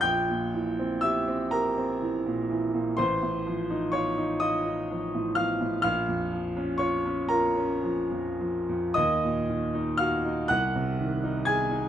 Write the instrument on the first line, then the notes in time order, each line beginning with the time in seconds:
grand piano
0.01 A#1 G5 G6
0.29 A#2
0.54 E3
0.79 C4
1.01 G4 E5 E6
1.28 C4
1.51 G4 A#4 A#5
1.78 C4
2.02 E3
2.26 A#2
2.51 E3
2.74 A#2
2.97 A1 C5 C6
3.23 A2
3.47 F3
3.70 D#4
3.92 F4 C#5 C#6
4.17 D#4
4.40 F4 D#5 D#6
4.67 D#4
4.91 F3
5.15 A2
5.35 F3 F5 F6
5.61 A2
5.82 A#1 F5 F6
6.09 F2
6.33 F3
6.57 C#4
6.78 F4 C#5 C#6
7.06 C#4
7.29 F4 A#4 A#5
7.57 C#4
7.84 F3
8.12 F2
8.41 F3
8.69 F2
8.94 D#2 D#5 D#6
9.24 A#2
9.50 D#3
9.74 D#4
9.97 F#4 F5 F6
10.25 D#4
10.48 C2 F#5 F#6
10.75 C3
11.00 D#3
11.24 D#4
11.45 G#4 G#5 G#6
11.71 D#4